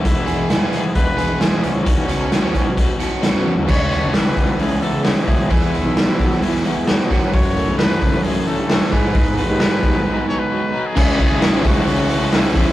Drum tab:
CC |----------------|----------------|x---------------|----------------|
HH |x-x-x-x-x-x-x-x-|x-x-x-x-x-x-x---|--o-o-o-o-o-o-o-|o-o-o-o-o-o-o-o-|
SD |----o-------o---|----o-------o---|----o-------o---|----o--o-o--o---|
T1 |----------------|--------------o-|----------------|----------------|
FT |----------------|---------------o|----------------|----------------|
BD |o-------o-------|o-----o-o-------|o-----o-------o-|o-----o-------o-|

CC |----------------|----------------|x---------------|
HH |o-o-o-o-o-o-o-o-|o-o-o-o---------|--o-o-o-o-o-o-o-|
SD |----o-------o---|----o-----------|----o-------o---|
T1 |----------------|----------------|----------------|
FT |----------------|----------------|----------------|
BD |o-----o-------o-|o-----o---------|o-o---o-------o-|